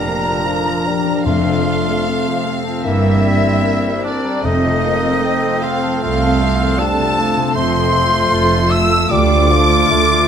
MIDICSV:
0, 0, Header, 1, 13, 480
1, 0, Start_track
1, 0, Tempo, 798935
1, 758, Time_signature, 4, 2, 24, 8
1, 3148, Tempo, 770218
1, 5068, Tempo, 796813
1, 6248, End_track
2, 0, Start_track
2, 0, Title_t, "Flute"
2, 0, Program_c, 0, 73
2, 0, Note_on_c, 0, 82, 65
2, 743, Note_off_c, 0, 82, 0
2, 761, Note_on_c, 0, 77, 66
2, 1530, Note_off_c, 0, 77, 0
2, 1708, Note_on_c, 0, 76, 57
2, 2427, Note_on_c, 0, 74, 59
2, 2436, Note_off_c, 0, 76, 0
2, 2662, Note_off_c, 0, 74, 0
2, 2666, Note_on_c, 0, 75, 73
2, 3395, Note_on_c, 0, 77, 64
2, 3404, Note_off_c, 0, 75, 0
2, 3637, Note_off_c, 0, 77, 0
2, 3640, Note_on_c, 0, 77, 66
2, 4114, Note_on_c, 0, 81, 77
2, 4123, Note_off_c, 0, 77, 0
2, 4590, Note_on_c, 0, 84, 85
2, 4599, Note_off_c, 0, 81, 0
2, 5304, Note_on_c, 0, 88, 75
2, 5313, Note_off_c, 0, 84, 0
2, 5543, Note_off_c, 0, 88, 0
2, 5546, Note_on_c, 0, 86, 68
2, 6248, Note_off_c, 0, 86, 0
2, 6248, End_track
3, 0, Start_track
3, 0, Title_t, "Violin section"
3, 0, Program_c, 1, 48
3, 0, Note_on_c, 1, 82, 77
3, 735, Note_off_c, 1, 82, 0
3, 757, Note_on_c, 1, 77, 70
3, 1709, Note_off_c, 1, 77, 0
3, 1715, Note_on_c, 1, 76, 79
3, 2428, Note_off_c, 1, 76, 0
3, 2437, Note_on_c, 1, 74, 64
3, 2669, Note_off_c, 1, 74, 0
3, 2674, Note_on_c, 1, 75, 68
3, 3397, Note_off_c, 1, 75, 0
3, 3404, Note_on_c, 1, 77, 71
3, 3637, Note_off_c, 1, 77, 0
3, 3644, Note_on_c, 1, 77, 81
3, 4110, Note_off_c, 1, 77, 0
3, 4116, Note_on_c, 1, 81, 89
3, 4589, Note_off_c, 1, 81, 0
3, 4592, Note_on_c, 1, 84, 83
3, 5289, Note_off_c, 1, 84, 0
3, 5305, Note_on_c, 1, 88, 88
3, 5541, Note_on_c, 1, 86, 99
3, 5544, Note_off_c, 1, 88, 0
3, 6248, Note_off_c, 1, 86, 0
3, 6248, End_track
4, 0, Start_track
4, 0, Title_t, "Violin section"
4, 0, Program_c, 2, 48
4, 0, Note_on_c, 2, 82, 68
4, 734, Note_off_c, 2, 82, 0
4, 755, Note_on_c, 2, 77, 74
4, 1689, Note_off_c, 2, 77, 0
4, 1712, Note_on_c, 2, 76, 62
4, 2412, Note_off_c, 2, 76, 0
4, 2421, Note_on_c, 2, 74, 55
4, 2662, Note_on_c, 2, 75, 68
4, 2666, Note_off_c, 2, 74, 0
4, 3375, Note_off_c, 2, 75, 0
4, 3385, Note_on_c, 2, 77, 67
4, 3622, Note_off_c, 2, 77, 0
4, 3629, Note_on_c, 2, 77, 71
4, 4102, Note_off_c, 2, 77, 0
4, 4110, Note_on_c, 2, 81, 77
4, 4580, Note_on_c, 2, 84, 85
4, 4585, Note_off_c, 2, 81, 0
4, 5283, Note_off_c, 2, 84, 0
4, 5292, Note_on_c, 2, 88, 83
4, 5532, Note_on_c, 2, 86, 76
4, 5537, Note_off_c, 2, 88, 0
4, 6248, Note_off_c, 2, 86, 0
4, 6248, End_track
5, 0, Start_track
5, 0, Title_t, "Cor anglais"
5, 0, Program_c, 3, 69
5, 0, Note_on_c, 3, 70, 59
5, 738, Note_off_c, 3, 70, 0
5, 757, Note_on_c, 3, 65, 69
5, 1528, Note_off_c, 3, 65, 0
5, 1713, Note_on_c, 3, 64, 63
5, 2403, Note_off_c, 3, 64, 0
5, 2426, Note_on_c, 3, 62, 64
5, 2670, Note_on_c, 3, 63, 71
5, 2679, Note_off_c, 3, 62, 0
5, 3394, Note_on_c, 3, 65, 69
5, 3403, Note_off_c, 3, 63, 0
5, 3635, Note_off_c, 3, 65, 0
5, 3639, Note_on_c, 3, 65, 71
5, 4113, Note_on_c, 3, 69, 76
5, 4122, Note_off_c, 3, 65, 0
5, 4584, Note_off_c, 3, 69, 0
5, 4588, Note_on_c, 3, 72, 85
5, 5298, Note_on_c, 3, 76, 86
5, 5307, Note_off_c, 3, 72, 0
5, 5545, Note_on_c, 3, 74, 79
5, 5554, Note_off_c, 3, 76, 0
5, 6248, Note_off_c, 3, 74, 0
5, 6248, End_track
6, 0, Start_track
6, 0, Title_t, "Harp"
6, 0, Program_c, 4, 46
6, 0, Note_on_c, 4, 46, 53
6, 0, Note_on_c, 4, 53, 36
6, 0, Note_on_c, 4, 62, 41
6, 0, Note_on_c, 4, 65, 41
6, 0, Note_on_c, 4, 70, 42
6, 0, Note_on_c, 4, 74, 42
6, 0, Note_on_c, 4, 82, 40
6, 29, Note_on_c, 4, 77, 38
6, 147, Note_off_c, 4, 74, 0
6, 154, Note_on_c, 4, 74, 47
6, 272, Note_off_c, 4, 65, 0
6, 279, Note_on_c, 4, 65, 44
6, 394, Note_off_c, 4, 53, 0
6, 402, Note_on_c, 4, 53, 41
6, 515, Note_off_c, 4, 62, 0
6, 522, Note_on_c, 4, 62, 42
6, 631, Note_off_c, 4, 53, 0
6, 638, Note_on_c, 4, 53, 42
6, 762, Note_on_c, 4, 41, 57
6, 777, Note_off_c, 4, 74, 0
6, 777, Note_off_c, 4, 82, 0
6, 778, Note_off_c, 4, 62, 0
6, 779, Note_off_c, 4, 70, 0
6, 783, Note_off_c, 4, 46, 0
6, 877, Note_on_c, 4, 48, 37
6, 999, Note_on_c, 4, 60, 42
6, 1111, Note_off_c, 4, 65, 0
6, 1118, Note_on_c, 4, 65, 41
6, 1237, Note_on_c, 4, 69, 43
6, 1466, Note_off_c, 4, 77, 0
6, 1473, Note_on_c, 4, 77, 49
6, 1589, Note_on_c, 4, 81, 39
6, 1702, Note_on_c, 4, 43, 55
6, 1727, Note_off_c, 4, 81, 0
6, 1728, Note_off_c, 4, 53, 0
6, 1728, Note_off_c, 4, 77, 0
6, 1729, Note_off_c, 4, 48, 0
6, 1730, Note_off_c, 4, 65, 0
6, 1730, Note_off_c, 4, 69, 0
6, 1731, Note_off_c, 4, 41, 0
6, 1824, Note_on_c, 4, 55, 38
6, 1940, Note_off_c, 4, 60, 0
6, 1947, Note_on_c, 4, 60, 38
6, 2059, Note_off_c, 4, 55, 0
6, 2066, Note_on_c, 4, 55, 43
6, 2190, Note_on_c, 4, 70, 42
6, 2315, Note_on_c, 4, 72, 54
6, 2425, Note_off_c, 4, 70, 0
6, 2432, Note_on_c, 4, 70, 48
6, 2551, Note_on_c, 4, 82, 49
6, 2671, Note_on_c, 4, 41, 61
6, 2684, Note_off_c, 4, 43, 0
6, 2687, Note_off_c, 4, 55, 0
6, 2690, Note_off_c, 4, 82, 0
6, 2691, Note_off_c, 4, 70, 0
6, 2797, Note_on_c, 4, 48, 41
6, 2908, Note_off_c, 4, 60, 0
6, 2916, Note_on_c, 4, 60, 49
6, 3035, Note_on_c, 4, 65, 43
6, 3154, Note_on_c, 4, 69, 52
6, 3267, Note_off_c, 4, 72, 0
6, 3275, Note_on_c, 4, 72, 49
6, 3397, Note_on_c, 4, 77, 47
6, 3513, Note_on_c, 4, 81, 48
6, 3633, Note_off_c, 4, 77, 0
6, 3640, Note_on_c, 4, 77, 57
6, 3757, Note_off_c, 4, 81, 0
6, 3764, Note_on_c, 4, 81, 46
6, 3871, Note_off_c, 4, 77, 0
6, 3878, Note_on_c, 4, 77, 49
6, 3990, Note_off_c, 4, 72, 0
6, 3997, Note_on_c, 4, 72, 52
6, 4111, Note_off_c, 4, 65, 0
6, 4118, Note_on_c, 4, 65, 49
6, 4228, Note_off_c, 4, 48, 0
6, 4235, Note_on_c, 4, 48, 53
6, 4345, Note_off_c, 4, 60, 0
6, 4353, Note_on_c, 4, 60, 46
6, 4462, Note_off_c, 4, 48, 0
6, 4469, Note_on_c, 4, 48, 49
6, 4582, Note_off_c, 4, 41, 0
6, 4590, Note_on_c, 4, 41, 64
6, 4607, Note_off_c, 4, 48, 0
6, 4710, Note_on_c, 4, 48, 48
6, 4827, Note_on_c, 4, 57, 48
6, 4941, Note_off_c, 4, 65, 0
6, 4948, Note_on_c, 4, 65, 49
6, 5062, Note_off_c, 4, 69, 0
6, 5069, Note_on_c, 4, 69, 59
6, 5178, Note_off_c, 4, 65, 0
6, 5185, Note_on_c, 4, 65, 52
6, 5295, Note_off_c, 4, 77, 0
6, 5302, Note_on_c, 4, 77, 59
6, 5412, Note_off_c, 4, 81, 0
6, 5419, Note_on_c, 4, 81, 51
6, 5544, Note_on_c, 4, 50, 63
6, 5561, Note_off_c, 4, 60, 0
6, 5562, Note_off_c, 4, 41, 0
6, 5562, Note_off_c, 4, 72, 0
6, 5563, Note_off_c, 4, 48, 0
6, 5665, Note_on_c, 4, 62, 49
6, 5781, Note_off_c, 4, 57, 0
6, 5788, Note_on_c, 4, 57, 45
6, 5901, Note_off_c, 4, 65, 0
6, 5908, Note_on_c, 4, 65, 56
6, 6020, Note_off_c, 4, 69, 0
6, 6027, Note_on_c, 4, 69, 52
6, 6138, Note_off_c, 4, 65, 0
6, 6145, Note_on_c, 4, 65, 68
6, 6248, Note_off_c, 4, 50, 0
6, 6248, Note_off_c, 4, 57, 0
6, 6248, Note_off_c, 4, 62, 0
6, 6248, Note_off_c, 4, 65, 0
6, 6248, Note_off_c, 4, 69, 0
6, 6248, Note_off_c, 4, 77, 0
6, 6248, Note_off_c, 4, 81, 0
6, 6248, End_track
7, 0, Start_track
7, 0, Title_t, "Clarinet"
7, 0, Program_c, 5, 71
7, 0, Note_on_c, 5, 62, 46
7, 651, Note_off_c, 5, 62, 0
7, 753, Note_on_c, 5, 60, 47
7, 1059, Note_off_c, 5, 60, 0
7, 1240, Note_on_c, 5, 60, 59
7, 2646, Note_off_c, 5, 60, 0
7, 2673, Note_on_c, 5, 60, 62
7, 4124, Note_on_c, 5, 62, 61
7, 4133, Note_off_c, 5, 60, 0
7, 4593, Note_off_c, 5, 62, 0
7, 4602, Note_on_c, 5, 60, 61
7, 5063, Note_off_c, 5, 60, 0
7, 5074, Note_on_c, 5, 65, 58
7, 5370, Note_off_c, 5, 65, 0
7, 5551, Note_on_c, 5, 65, 69
7, 6248, Note_off_c, 5, 65, 0
7, 6248, End_track
8, 0, Start_track
8, 0, Title_t, "French horn section"
8, 0, Program_c, 6, 60
8, 0, Note_on_c, 6, 53, 46
8, 0, Note_on_c, 6, 62, 45
8, 736, Note_off_c, 6, 53, 0
8, 762, Note_on_c, 6, 57, 53
8, 1209, Note_off_c, 6, 62, 0
8, 1234, Note_on_c, 6, 60, 48
8, 1693, Note_off_c, 6, 57, 0
8, 1710, Note_on_c, 6, 58, 53
8, 2566, Note_off_c, 6, 58, 0
8, 2668, Note_on_c, 6, 57, 56
8, 4588, Note_off_c, 6, 60, 0
8, 4592, Note_on_c, 6, 65, 59
8, 6248, Note_off_c, 6, 57, 0
8, 6248, Note_off_c, 6, 65, 0
8, 6248, End_track
9, 0, Start_track
9, 0, Title_t, "Bassoon"
9, 0, Program_c, 7, 70
9, 0, Note_on_c, 7, 55, 49
9, 274, Note_on_c, 7, 53, 50
9, 283, Note_off_c, 7, 55, 0
9, 520, Note_on_c, 7, 55, 50
9, 529, Note_off_c, 7, 53, 0
9, 756, Note_off_c, 7, 55, 0
9, 759, Note_on_c, 7, 57, 48
9, 988, Note_off_c, 7, 57, 0
9, 991, Note_on_c, 7, 57, 49
9, 1531, Note_off_c, 7, 57, 0
9, 1707, Note_on_c, 7, 58, 54
9, 1938, Note_on_c, 7, 55, 59
9, 1947, Note_off_c, 7, 58, 0
9, 2176, Note_off_c, 7, 55, 0
9, 2180, Note_on_c, 7, 55, 48
9, 2665, Note_on_c, 7, 57, 54
9, 2674, Note_off_c, 7, 55, 0
9, 2908, Note_on_c, 7, 58, 58
9, 2917, Note_off_c, 7, 57, 0
9, 3149, Note_on_c, 7, 60, 61
9, 3158, Note_off_c, 7, 58, 0
9, 3633, Note_on_c, 7, 57, 59
9, 3642, Note_off_c, 7, 60, 0
9, 3870, Note_off_c, 7, 57, 0
9, 3874, Note_on_c, 7, 57, 68
9, 4111, Note_on_c, 7, 55, 61
9, 4120, Note_off_c, 7, 57, 0
9, 4360, Note_on_c, 7, 53, 61
9, 4370, Note_off_c, 7, 55, 0
9, 4582, Note_off_c, 7, 53, 0
9, 4586, Note_on_c, 7, 57, 62
9, 4817, Note_off_c, 7, 57, 0
9, 4820, Note_on_c, 7, 57, 67
9, 5525, Note_off_c, 7, 57, 0
9, 5540, Note_on_c, 7, 55, 74
9, 5781, Note_on_c, 7, 53, 72
9, 5790, Note_off_c, 7, 55, 0
9, 6019, Note_off_c, 7, 53, 0
9, 6023, Note_on_c, 7, 57, 71
9, 6248, Note_off_c, 7, 57, 0
9, 6248, End_track
10, 0, Start_track
10, 0, Title_t, "Viola section"
10, 0, Program_c, 8, 48
10, 0, Note_on_c, 8, 70, 46
10, 38, Note_on_c, 8, 58, 43
10, 153, Note_on_c, 8, 53, 46
10, 157, Note_off_c, 8, 58, 0
10, 276, Note_off_c, 8, 53, 0
10, 286, Note_on_c, 8, 50, 50
10, 399, Note_on_c, 8, 53, 44
10, 404, Note_off_c, 8, 50, 0
10, 517, Note_on_c, 8, 58, 42
10, 519, Note_off_c, 8, 53, 0
10, 634, Note_on_c, 8, 62, 47
10, 638, Note_off_c, 8, 58, 0
10, 726, Note_off_c, 8, 70, 0
10, 753, Note_on_c, 8, 48, 50
10, 753, Note_on_c, 8, 69, 50
10, 755, Note_off_c, 8, 62, 0
10, 866, Note_off_c, 8, 48, 0
10, 874, Note_on_c, 8, 53, 48
10, 994, Note_off_c, 8, 53, 0
10, 999, Note_on_c, 8, 57, 47
10, 1117, Note_off_c, 8, 57, 0
10, 1120, Note_on_c, 8, 60, 46
10, 1235, Note_on_c, 8, 57, 47
10, 1237, Note_off_c, 8, 60, 0
10, 1354, Note_off_c, 8, 57, 0
10, 1363, Note_on_c, 8, 53, 48
10, 1477, Note_off_c, 8, 53, 0
10, 1479, Note_on_c, 8, 48, 47
10, 1594, Note_off_c, 8, 48, 0
10, 1600, Note_on_c, 8, 53, 47
10, 1688, Note_off_c, 8, 69, 0
10, 1714, Note_off_c, 8, 53, 0
10, 1720, Note_on_c, 8, 70, 51
10, 1722, Note_on_c, 8, 52, 52
10, 1826, Note_off_c, 8, 52, 0
10, 1841, Note_on_c, 8, 55, 46
10, 1954, Note_off_c, 8, 55, 0
10, 1961, Note_on_c, 8, 58, 48
10, 2074, Note_off_c, 8, 58, 0
10, 2075, Note_on_c, 8, 60, 50
10, 2188, Note_on_c, 8, 58, 55
10, 2190, Note_off_c, 8, 60, 0
10, 2305, Note_on_c, 8, 55, 51
10, 2306, Note_off_c, 8, 58, 0
10, 2425, Note_off_c, 8, 55, 0
10, 2433, Note_on_c, 8, 52, 47
10, 2550, Note_off_c, 8, 52, 0
10, 2550, Note_on_c, 8, 55, 53
10, 2654, Note_off_c, 8, 70, 0
10, 2670, Note_off_c, 8, 55, 0
10, 2676, Note_on_c, 8, 48, 56
10, 2676, Note_on_c, 8, 69, 56
10, 2785, Note_off_c, 8, 48, 0
10, 2794, Note_on_c, 8, 53, 50
10, 2912, Note_off_c, 8, 53, 0
10, 2922, Note_on_c, 8, 57, 55
10, 3035, Note_off_c, 8, 57, 0
10, 3040, Note_on_c, 8, 60, 52
10, 3153, Note_off_c, 8, 60, 0
10, 3154, Note_on_c, 8, 57, 54
10, 3274, Note_off_c, 8, 57, 0
10, 3283, Note_on_c, 8, 53, 55
10, 3400, Note_off_c, 8, 53, 0
10, 3404, Note_on_c, 8, 48, 51
10, 3521, Note_off_c, 8, 48, 0
10, 3528, Note_on_c, 8, 53, 52
10, 3643, Note_off_c, 8, 53, 0
10, 3651, Note_on_c, 8, 57, 54
10, 3756, Note_off_c, 8, 57, 0
10, 3776, Note_on_c, 8, 60, 50
10, 3886, Note_off_c, 8, 60, 0
10, 3897, Note_on_c, 8, 57, 53
10, 4006, Note_off_c, 8, 57, 0
10, 4015, Note_on_c, 8, 53, 59
10, 4125, Note_off_c, 8, 53, 0
10, 4127, Note_on_c, 8, 48, 59
10, 4240, Note_off_c, 8, 48, 0
10, 4247, Note_on_c, 8, 53, 55
10, 4359, Note_off_c, 8, 53, 0
10, 4364, Note_on_c, 8, 57, 52
10, 4476, Note_off_c, 8, 57, 0
10, 4486, Note_on_c, 8, 60, 57
10, 4568, Note_off_c, 8, 69, 0
10, 4596, Note_off_c, 8, 60, 0
10, 4830, Note_on_c, 8, 57, 52
10, 4830, Note_on_c, 8, 65, 61
10, 5293, Note_off_c, 8, 57, 0
10, 5294, Note_off_c, 8, 65, 0
10, 5304, Note_on_c, 8, 57, 57
10, 5308, Note_on_c, 8, 65, 54
10, 5539, Note_off_c, 8, 57, 0
10, 5540, Note_off_c, 8, 65, 0
10, 5551, Note_on_c, 8, 57, 53
10, 5551, Note_on_c, 8, 65, 56
10, 5779, Note_off_c, 8, 57, 0
10, 5780, Note_off_c, 8, 65, 0
10, 5786, Note_on_c, 8, 57, 59
10, 5787, Note_on_c, 8, 65, 57
10, 6248, Note_off_c, 8, 57, 0
10, 6248, Note_off_c, 8, 65, 0
10, 6248, End_track
11, 0, Start_track
11, 0, Title_t, "Cello section"
11, 0, Program_c, 10, 48
11, 0, Note_on_c, 10, 41, 56
11, 195, Note_off_c, 10, 41, 0
11, 759, Note_on_c, 10, 41, 60
11, 1156, Note_off_c, 10, 41, 0
11, 1711, Note_on_c, 10, 43, 63
11, 2107, Note_off_c, 10, 43, 0
11, 2666, Note_on_c, 10, 41, 63
11, 3067, Note_off_c, 10, 41, 0
11, 3634, Note_on_c, 10, 36, 67
11, 4034, Note_off_c, 10, 36, 0
11, 4588, Note_on_c, 10, 41, 69
11, 5009, Note_off_c, 10, 41, 0
11, 5064, Note_on_c, 10, 41, 64
11, 5484, Note_off_c, 10, 41, 0
11, 5542, Note_on_c, 10, 38, 72
11, 5967, Note_off_c, 10, 38, 0
11, 6025, Note_on_c, 10, 38, 69
11, 6248, Note_off_c, 10, 38, 0
11, 6248, End_track
12, 0, Start_track
12, 0, Title_t, "Timpani"
12, 0, Program_c, 11, 47
12, 758, Note_on_c, 11, 41, 66
12, 1449, Note_off_c, 11, 41, 0
12, 2667, Note_on_c, 11, 41, 65
12, 3368, Note_off_c, 11, 41, 0
12, 6248, End_track
13, 0, Start_track
13, 0, Title_t, "Double bass section"
13, 0, Program_c, 12, 48
13, 0, Note_on_c, 12, 29, 58
13, 193, Note_off_c, 12, 29, 0
13, 759, Note_on_c, 12, 29, 55
13, 1156, Note_off_c, 12, 29, 0
13, 1710, Note_on_c, 12, 31, 66
13, 2107, Note_off_c, 12, 31, 0
13, 2665, Note_on_c, 12, 29, 56
13, 3066, Note_off_c, 12, 29, 0
13, 3638, Note_on_c, 12, 36, 67
13, 4036, Note_off_c, 12, 36, 0
13, 4586, Note_on_c, 12, 29, 73
13, 5008, Note_off_c, 12, 29, 0
13, 5067, Note_on_c, 12, 29, 74
13, 5485, Note_off_c, 12, 29, 0
13, 5544, Note_on_c, 12, 38, 79
13, 5968, Note_off_c, 12, 38, 0
13, 6023, Note_on_c, 12, 38, 71
13, 6248, Note_off_c, 12, 38, 0
13, 6248, End_track
0, 0, End_of_file